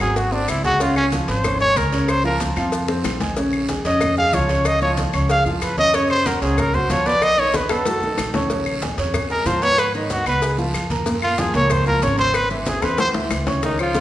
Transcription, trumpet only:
0.01 0.18 G#4 loud
0.17 0.34 F#4 medium
0.33 0.51 D4 medium
0.49 0.64 E4 medium
0.65 0.83 F#4 loud
0.81 0.96 F4 loud
0.97 1.06 C#4 loud
1.29 1.59 C5 medium
1.60 1.79 C#5 loud
1.77 2.11 A#4 medium
2.09 2.25 C5 loud
2.25 2.40 A#4 loud
3.86 4.16 D#5 loud
4.18 4.35 F5 loud
4.34 4.68 C#5 medium
4.67 4.82 D#5 loud
4.82 4.92 C#5 medium
5.30 5.45 F5 loud
5.47 5.63 G#4 medium
5.62 5.78 B4 medium
5.79 5.96 D#5 loud
5.95 6.10 C#5 loud
6.10 6.28 C5 loud
6.27 6.42 A#4 medium
6.42 6.61 G#4 medium
6.59 6.76 A#4 loud
6.75 6.92 C5 loud
6.91 7.08 C#5 medium
7.07 7.25 D5 loud
7.23 7.41 D#5 loud
7.39 7.57 C#5 loud
7.56 7.72 B4 medium
7.71 8.51 A4 loud
9.31 9.48 A#4 loud
9.47 9.64 C5 loud
9.62 9.80 C#5 loud
9.79 9.94 B4 loud
9.95 10.11 D#4 soft
10.11 10.26 F#4 loud
10.27 10.57 B4 loud
11.23 11.40 F4 loud
11.39 11.55 G#4 medium
11.55 11.73 C#5 loud
11.72 11.87 C5 loud
11.87 12.05 A#4 loud
12.03 12.18 C#5 medium
12.19 12.37 C5 loud
12.35 12.51 B4 loud
12.52 12.68 E4 medium
12.68 12.85 G#4 medium
12.84 12.99 B4 medium
13.00 13.09 C5 loud
13.64 13.79 D#4 medium
13.81 14.00 F4 medium

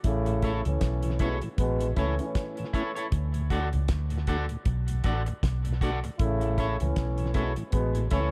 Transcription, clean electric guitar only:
0.43 0.60 E4 medium
0.43 0.60 A4 medium
0.43 0.61 C#5 medium
1.20 1.37 E4 medium
1.20 1.37 A4 medium
1.20 1.38 C#5 medium
1.97 2.13 E4 medium
1.97 2.14 A4 medium
1.97 2.14 C#5 loud
2.73 2.90 E4 medium
2.73 2.91 A4 medium
2.73 2.91 C#5 loud
2.95 3.06 E4 medium
2.95 3.06 A4 medium
2.95 3.05 C#5 medium
3.51 3.67 F#4 medium
3.51 3.68 A4 medium
3.51 3.68 D5 medium
4.28 4.44 F#4 medium
4.28 4.44 A4 medium
4.28 4.45 D5 loud
5.04 5.21 F#4 medium
5.04 5.21 A4 medium
5.04 5.22 D5 loud
5.26 muted clean electric guitar stroke soft
5.81 5.98 F#4 medium
5.81 5.98 A4 medium
5.81 5.99 D5 loud
6.04 muted clean electric guitar stroke medium
6.58 6.75 E4 medium
6.58 6.75 A4 medium
6.58 6.76 C#5 loud
7.34 7.51 E4 medium
7.34 7.52 A4 medium
7.34 7.52 C#5 medium
8.11 8.28 E4 medium
8.11 8.28 A4 medium
8.11 8.29 C#5 medium

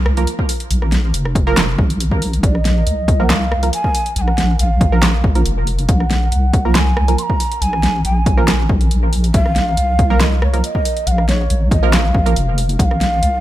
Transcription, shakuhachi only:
2.44 2.58 D5 loud
2.58 3.25 D#5 loud
3.23 3.32 F#5 medium
3.30 3.73 F5 loud
3.74 4.13 G#5 loud
4.17 4.22 G#5 loud
4.21 4.57 F#5 loud
4.60 5.20 F5 loud
5.89 6.64 F#5 loud
6.69 6.77 A#5 medium
6.75 7.20 G#5 loud
7.18 7.24 C6 loud
7.23 7.63 A#5 loud
7.62 8.04 G#5 loud
8.05 8.17 G5 loud
8.17 8.66 G#5 loud
9.34 9.46 E5 loud
9.46 10.22 F5 loud
10.21 10.42 D#5 loud
10.43 10.62 C#5 medium
10.64 11.09 D#5 loud
11.07 11.12 F#5 loud
11.11 11.28 F5 loud
11.29 11.69 C#5 medium
11.72 11.95 D#5 loud
11.94 12.58 F5 loud
12.79 12.85 F#5 loud
12.84 13.40 F5 loud

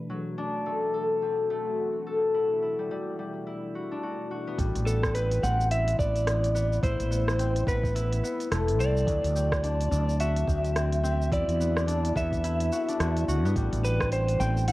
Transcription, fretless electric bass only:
4.59 4.73 A1 loud
4.75 5.40 A1 medium
5.43 5.96 A1 loud
5.99 6.80 A1 medium
6.83 6.97 A1 loud
7.00 7.64 A1 medium
7.67 8.20 A1 medium
8.51 8.79 E1 medium
8.79 9.04 C2 medium
9.07 9.21 D2 loud
9.24 9.89 D2 medium
9.91 10.45 D2 loud
10.48 11.29 D2 medium
11.32 11.46 E2 loud
11.48 12.13 E2 medium
12.16 12.69 E2 loud
13.00 13.24 E2 medium
13.28 13.45 D2 medium
13.45 13.54 G2 loud
13.56 13.70 A1 loud
13.72 14.37 A1 medium
14.40 14.72 A1 loud

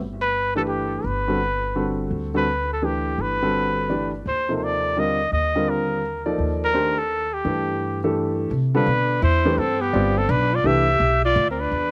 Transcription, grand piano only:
0.55 1.02 E3 medium
0.55 1.01 A3 medium
0.55 1.01 D4 medium
0.55 1.02 G4 medium
0.55 1.02 B4 medium
1.28 1.39 D3 medium
1.28 1.39 G3 soft
1.28 1.39 C4 soft
1.28 1.39 F#4 medium
1.28 1.39 A4 medium
1.75 2.30 D3 soft
1.75 2.30 G3 soft
1.75 2.30 C4 soft
1.75 2.30 F#4 soft
1.75 2.30 A4 medium
2.34 2.45 D3 medium
2.34 2.46 G3 soft
2.34 2.46 C4 medium
2.34 2.46 F#4 soft
2.34 2.46 A4 medium
2.82 3.37 E3 soft
2.82 3.37 A3 soft
2.82 3.37 D4 soft
2.82 3.37 G4 soft
2.82 3.37 B4 soft
3.42 3.87 D3 medium
3.42 3.87 G3 soft
3.42 3.87 C4 medium
3.42 3.88 F#4 medium
3.42 3.88 A4 medium
3.89 4.10 E3 soft
3.89 4.10 A3 soft
3.89 4.10 D4 soft
3.89 4.10 G4 soft
3.89 4.10 D5 soft
4.49 4.94 C3 soft
4.49 4.94 F3 soft
4.49 4.94 A#3 soft
4.49 4.94 D#4 soft
4.49 4.94 A4 soft
4.97 5.17 D3 soft
4.97 5.17 G3 soft
4.97 5.17 C4 soft
4.97 5.18 F4 soft
4.97 5.18 A#4 medium
5.55 6.01 D3 medium
5.55 6.01 G3 medium
5.55 6.01 C4 medium
5.55 6.01 F4 medium
5.55 6.01 A#4 medium
6.26 6.71 F3 medium
6.26 6.71 A#3 medium
6.26 6.72 D#4 medium
6.26 6.71 A4 medium
6.26 6.72 D5 medium
6.73 6.95 D#3 medium
6.73 6.95 A3 soft
6.73 6.95 D4 medium
6.73 6.95 G4 medium
6.73 6.95 C5 medium
7.44 7.99 E3 soft
7.44 7.99 A3 soft
7.44 7.99 D4 soft
7.44 7.99 G4 soft
7.44 7.99 B4 medium
8.04 8.49 E3 medium
8.04 8.49 A3 medium
8.04 8.49 D4 medium
8.04 8.49 G4 medium
8.04 8.50 A4 medium
8.74 8.86 D3 medium
8.74 8.86 G3 medium
8.74 8.86 C4 medium
8.74 8.86 F4 medium
8.74 8.86 A4 medium
9.45 9.57 E3 medium
9.45 9.57 A3 medium
9.45 9.57 D4 medium
9.45 9.57 G4 medium
9.45 9.57 B4 medium
9.93 10.15 G3 medium
9.93 10.15 C4 medium
9.93 10.15 F4 medium
9.93 10.15 B4 medium
9.93 10.15 D5 medium
10.64 10.86 E3 medium
10.64 10.85 A3 medium
10.64 10.86 D4 medium
10.64 10.86 G4 medium
10.64 10.86 B4 medium

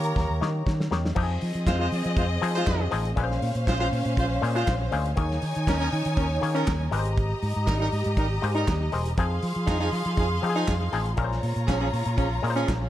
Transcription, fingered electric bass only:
0.00 0.12 D#3 medium
0.16 0.27 D#2 loud
0.30 0.39 D#2 loud
0.42 0.61 D#3 loud
0.67 0.87 D#3 loud
0.91 1.11 E2 medium
1.17 1.36 F2 loud
1.42 1.53 F3 loud
1.55 1.64 F3 medium
1.67 1.87 F2 medium
1.92 2.02 F3 loud
2.06 2.15 F3 loud
2.17 2.37 F2 medium
2.42 2.62 F3 loud
2.67 2.87 F2 loud
2.93 3.12 A1 loud
3.17 3.37 A#1 loud
3.42 3.53 A#2 loud
3.55 3.64 A#2 medium
3.68 3.87 A#1 loud
3.92 4.03 A#2 loud
4.05 4.15 A#2 medium
4.17 4.37 A#1 loud
4.43 4.62 A#2 loud
4.68 4.88 A#1 medium
4.92 5.12 D2 loud
5.18 5.37 D#2 loud
5.42 5.53 D#3 loud
5.56 5.65 D#3 loud
5.67 5.87 D#2 loud
5.93 6.03 D#3 loud
6.06 6.15 D#3 loud
6.17 6.37 D#2 loud
6.42 6.62 D#3 loud
6.68 6.88 D#2 loud
6.92 7.32 G#1 loud
7.43 7.53 G#2 loud
7.56 7.66 G#2 loud
7.68 7.88 G#1 loud
7.93 8.03 G#2 loud
8.06 8.15 G#2 loud
8.17 8.37 G#1 loud
8.43 8.63 G#2 loud
8.68 8.88 D#2 medium
8.93 9.13 E1 medium
9.18 9.38 F2 loud
9.43 9.54 F3 loud
9.56 9.66 F3 medium
9.68 9.88 F2 loud
9.92 10.03 F3 loud
10.06 10.15 F3 loud
10.18 10.38 F2 loud
10.43 10.63 F3 loud
10.68 10.88 F2 loud
10.93 11.13 A1 medium
11.18 11.38 A#1 loud
11.43 11.54 A#2 loud
11.56 11.66 A#2 loud
11.68 11.88 A#1 loud
11.93 12.04 A#2 medium
12.06 12.16 A#2 loud
12.18 12.38 A#1 loud
12.43 12.63 A#2 loud
12.69 12.88 A#1 medium

